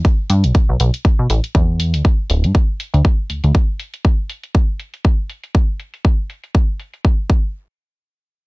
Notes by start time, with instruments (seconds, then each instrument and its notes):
0.05 kick, closed hi-hat
0.30 analog synth bass G2, open hi-hat
0.44 analog synth bass B1, closed hi-hat
0.55 kick, closed hi-hat
0.69 analog synth bass B1
0.80 analog synth bass B1, open hi-hat
0.94 closed hi-hat
1.05 kick, closed hi-hat
1.19 analog synth bass B2
1.30 analog synth bass A1, open hi-hat
1.44 closed hi-hat
1.55 analog synth bass E2, kick, closed hi-hat
1.80 open hi-hat
1.94 analog synth bass D2, open hi-hat
2.05 kick, closed hi-hat
2.30 analog synth bass D1, open hi-hat
2.44 analog synth bass G2, closed hi-hat
2.55 kick, closed hi-hat
2.80 open hi-hat
2.94 analog synth bass D2, closed hi-hat
3.05 kick, closed hi-hat
3.30 analog synth bass D2, open hi-hat
3.44 analog synth bass D2, closed hi-hat
3.55 kick, closed hi-hat
3.79 open hi-hat
3.94 closed hi-hat
4.05 kick, closed hi-hat
4.29 open hi-hat
4.43 closed hi-hat
4.55 kick, closed hi-hat
4.80 open hi-hat
4.94 closed hi-hat
5.04 kick, closed hi-hat
5.30 open hi-hat
5.43 closed hi-hat
5.55 kick, closed hi-hat
5.80 open hi-hat
5.94 open hi-hat
6.05 kick, closed hi-hat
6.30 open hi-hat
6.44 closed hi-hat
6.54 kick, closed hi-hat
6.80 open hi-hat
6.93 closed hi-hat
7.05 kick
7.30 kick